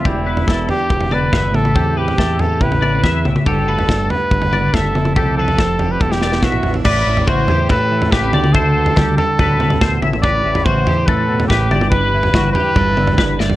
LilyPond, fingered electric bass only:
\new Staff \with { instrumentName = "Fingered electric bass" } { \clef bass \time 4/4 \key a \dorian \tempo 4 = 142 e,,4 e,,8 r8 e,,4 g,,8 a,,8 | e,4 e,4 a,,4 e,8 c,16 r16 | g,,4 g,,8 r8 g,,4 g,,8 f,,8 | c,4 f,,4 e,,4 b,,8 a,,8 |
a,,8 a,,8 a,,8 e,8 a,4 a,,8 d,8~ | d,4 d,8 r8 d,4 d,8 a,,8~ | a,,8 a,,8 a,,8 e,8 a,4 a,,8 g,,8~ | g,,4 g,,8 r8 g,,4 g,,4 | }